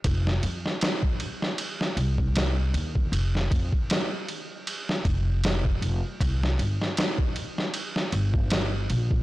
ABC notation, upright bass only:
X:1
M:4/4
L:1/8
Q:"Swing 16ths" 1/4=78
K:Cphr
V:1 name="Upright bass" clef=bass
F,,, F,, z3 C,,2 E,, | F,,, F,, z3 F,,,2 F,,, | C,, G,,, z3 G,,,2 B,,, |]